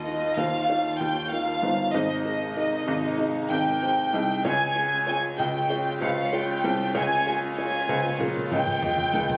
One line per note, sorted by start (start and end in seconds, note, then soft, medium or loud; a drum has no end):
0.00 0.33 D#2 medium
0.00 0.34 D#3 medium
0.00 1.92 D#3 medium
0.00 1.92 A#3 medium
0.00 0.07 D#4 medium
0.00 0.07 F4 medium
0.00 1.92 F4 medium
0.00 0.07 A#4 medium
0.05 0.31 D#4 medium
0.05 0.31 F4 medium
0.05 0.31 A#4 medium
0.05 0.35 D#5 medium
0.37 0.96 D#2 medium
0.37 0.62 D#4 medium
0.37 0.62 F4 medium
0.37 0.62 C5 medium
0.37 1.00 F5 medium
0.69 0.93 D#4 medium
0.69 0.93 F4 medium
0.69 0.93 C#5 medium
0.98 1.59 D#2 medium
0.98 1.24 D#4 medium
0.98 1.24 F4 soft
0.98 1.25 G4 medium
0.98 1.30 G5 medium
1.30 1.56 D#4 medium
1.30 1.56 F4 medium
1.30 1.56 A#4 medium
1.30 1.93 F5 medium
1.62 1.92 G1 medium
1.62 1.87 D#4 medium
1.62 1.87 F4 medium
1.62 1.87 C5 medium
1.92 2.84 G#1 medium
1.92 2.84 G#2 medium
1.92 4.42 C3 medium
1.92 6.91 G#3 medium
1.92 4.42 D#4 medium
1.92 2.18 D#4 medium
1.92 2.18 G#4 medium
1.92 2.18 C5 loud
1.92 2.23 D#5 medium
2.24 2.49 D#4 medium
2.24 2.49 G#4 medium
2.24 2.49 A#4 medium
2.24 2.54 D#5 medium
2.56 2.80 D#4 medium
2.56 2.81 G#4 medium
2.56 2.81 A#4 medium
2.56 3.15 D#5 medium
2.87 3.47 G#1 medium
2.87 3.11 D#4 medium
2.87 3.11 G#4 medium
2.87 3.12 D#5 medium
3.18 3.43 D#4 medium
3.18 3.43 G#4 medium
3.18 3.43 D#5 medium
3.50 4.10 G#1 medium
3.50 3.74 D#4 medium
3.50 3.75 G#4 medium
3.50 3.75 A#4 medium
3.50 4.41 G5 medium
3.82 4.06 D#4 medium
3.82 4.06 G#4 medium
3.82 4.06 C5 medium
4.13 4.43 C2 medium
4.13 4.37 D#4 medium
4.13 4.37 G#4 medium
4.13 4.37 D#5 medium
4.44 5.35 C#2 medium
4.44 5.35 C#3 medium
4.44 9.37 C#4 medium
4.44 4.68 F4 medium
4.44 9.37 F4 medium
4.44 4.68 G#4 medium
4.44 4.69 C#5 loud
4.44 5.07 G#5 loud
4.76 5.00 F4 medium
4.76 5.00 G#4 medium
4.76 5.00 C#5 medium
5.06 5.31 F4 medium
5.06 5.31 G#4 medium
5.06 5.31 C#5 medium
5.06 5.22 G#5 medium
5.38 5.98 C#2 medium
5.38 5.62 F4 medium
5.38 5.62 G#4 medium
5.38 5.63 D#5 medium
5.38 5.98 G5 medium
5.69 5.94 F4 medium
5.69 5.94 G#4 medium
5.69 5.94 C#5 medium
6.01 6.60 C#2 medium
6.01 6.25 F4 medium
6.01 6.25 G#4 medium
6.01 6.25 C5 medium
6.01 6.33 F5 medium
6.33 6.56 F4 medium
6.33 6.57 G#4 medium
6.33 6.57 C#5 medium
6.33 6.96 G5 medium
6.64 6.93 C2 medium
6.64 6.88 F4 medium
6.64 6.88 G#4 medium
6.64 6.88 C5 medium
6.94 7.85 C#2 loud
6.94 7.85 C#3 medium
6.94 9.37 A#3 medium
6.94 7.18 F4 medium
6.94 7.19 G#4 medium
6.94 7.19 C#5 loud
6.94 7.27 G#5 loud
7.27 7.51 F4 medium
7.27 7.51 G#4 medium
7.27 7.51 C#5 medium
7.27 7.42 G#5 medium
7.58 7.82 F4 medium
7.58 7.82 G#4 medium
7.58 7.82 C#5 medium
7.58 8.17 G#5 medium
7.89 8.48 C#2 medium
7.89 8.13 F4 medium
7.89 8.13 G#4 medium
7.89 8.13 C5 medium
8.20 8.44 F4 medium
8.20 8.44 G#4 medium
8.20 8.44 A#4 medium
8.20 high tom soft
8.36 high tom soft
8.52 9.10 C#2 medium
8.52 8.76 F4 medium
8.52 8.76 G#4 medium
8.52 8.76 D#5 medium
8.52 9.37 G5 medium
8.52 mid tom medium
8.67 mid tom medium
8.82 9.07 F4 medium
8.82 9.07 G#4 medium
8.82 9.07 D#5 medium
8.82 mid tom medium
8.98 mid tom medium
9.14 9.37 C#2 medium
9.14 9.37 F4 medium
9.14 9.37 G#4 medium
9.14 9.37 A#4 medium
9.14 floor tom medium
9.30 floor tom medium